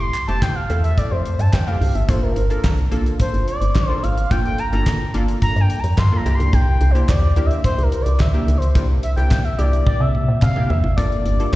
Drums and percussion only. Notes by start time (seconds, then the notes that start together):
0.14 clap, closed hi-hat
0.28 closed hi-hat
0.42 kick, snare, clap
0.70 closed hi-hat
0.84 closed hi-hat
0.98 kick, closed hi-hat
1.26 closed hi-hat
1.39 closed hi-hat
1.53 kick, snare, clap
1.67 closed hi-hat
1.81 open hi-hat
1.95 closed hi-hat
2.09 kick, closed hi-hat
2.36 closed hi-hat
2.50 closed hi-hat
2.64 kick, snare, clap
2.78 closed hi-hat
2.92 closed hi-hat
3.06 closed hi-hat
3.20 kick, closed hi-hat
3.34 closed hi-hat
3.48 closed hi-hat
3.62 closed hi-hat
3.75 kick, snare, clap
4.04 closed hi-hat
4.18 closed hi-hat
4.31 kick, closed hi-hat
4.45 closed hi-hat
4.58 closed hi-hat
4.73 closed hi-hat
4.86 kick, snare, clap
5.14 closed hi-hat
5.28 closed hi-hat
5.42 kick, closed hi-hat
5.56 closed hi-hat
5.70 closed hi-hat
5.84 closed hi-hat
5.98 kick, snare, clap
6.26 closed hi-hat
6.40 closed hi-hat
6.53 kick, closed hi-hat
6.81 closed hi-hat
6.95 closed hi-hat
7.09 kick, snare, clap
7.36 closed hi-hat
7.51 closed hi-hat
7.64 kick, closed hi-hat
7.78 closed hi-hat
7.92 closed hi-hat
8.06 closed hi-hat
8.20 kick, snare, clap
8.34 closed hi-hat
8.48 closed hi-hat
8.62 closed hi-hat
8.75 kick, closed hi-hat
9.03 closed hi-hat
9.18 closed hi-hat
9.31 kick, snare, clap
9.45 closed hi-hat
9.59 closed hi-hat
9.73 closed hi-hat
9.87 kick, high tom
10.15 mid tom
10.42 kick, clap, mid tom
10.56 mid tom
10.70 floor tom
10.84 floor tom
10.98 kick, closed hi-hat
11.12 closed hi-hat
11.26 closed hi-hat
11.40 closed hi-hat